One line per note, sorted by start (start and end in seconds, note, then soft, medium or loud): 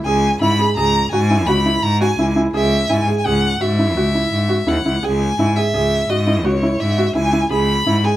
0.05 0.39 C#2 loud
0.05 0.24 G#4 medium
0.05 0.38 G#5 loud
0.41 0.58 G#2 medium
0.41 0.50 E4 medium
0.41 0.74 B5 medium
0.59 0.68 G#4 medium
0.76 1.10 C#2 medium
0.76 0.95 G#4 medium
0.76 1.10 A#5 loud
1.11 1.49 G#2 medium
1.11 1.22 F#4 medium
1.11 1.48 G#5 loud
1.31 1.40 E4 medium
1.47 1.81 C#2 medium
1.47 1.57 F#4 medium
1.47 1.84 B5 medium
1.66 1.84 E4 medium
1.83 2.17 G#2 medium
1.83 2.00 A#5 loud
2.01 2.10 F#4 medium
2.01 2.34 G#5 medium
2.18 2.52 C#2 medium
2.18 2.28 E4 medium
2.36 2.45 E4 medium
2.54 2.88 C#2 medium
2.54 2.72 G#4 medium
2.54 2.92 E5 medium
2.90 3.07 G#2 medium
2.90 2.99 E4 medium
2.90 3.18 G#5 medium
3.08 3.17 G#4 medium
3.18 3.27 G#5 medium
3.26 3.59 C#2 medium
3.26 3.44 G#4 medium
3.26 3.63 F#5 medium
3.61 3.98 G#2 medium
3.61 3.70 F#4 medium
3.61 4.70 E5 medium
3.79 3.88 E4 medium
3.96 4.30 C#2 medium
3.96 4.06 F#4 medium
4.15 4.33 E4 medium
4.32 4.65 G#2 medium
4.49 4.58 F#4 medium
4.67 4.84 D#2 medium
4.67 4.76 E4 medium
4.67 5.06 F#5 medium
4.85 5.01 C#2 medium
4.85 4.95 E4 medium
5.03 5.37 C#2 medium
5.03 5.21 G#4 medium
5.03 5.58 G#5 loud
5.38 5.55 G#2 medium
5.38 5.48 E4 medium
5.57 5.66 G#4 medium
5.57 6.11 E5 medium
5.73 6.07 C#2 medium
5.73 5.92 G#4 medium
6.09 6.46 G#2 medium
6.09 6.19 F#4 medium
6.09 6.46 D#5 medium
6.27 6.36 E4 medium
6.44 6.78 C#2 medium
6.44 6.54 F#4 medium
6.44 6.82 C#5 medium
6.63 6.81 E4 medium
6.80 7.14 G#2 medium
6.80 7.15 E5 medium
6.98 7.07 F#4 medium
7.15 7.49 C#2 medium
7.15 7.25 E4 medium
7.15 7.49 G#5 medium
7.33 7.42 E4 medium
7.51 7.85 C#2 medium
7.51 7.69 G#4 medium
7.51 8.06 B5 loud
7.86 8.04 G#2 medium
7.86 7.96 E4 medium
8.04 8.13 G#4 medium
8.04 8.17 G#5 medium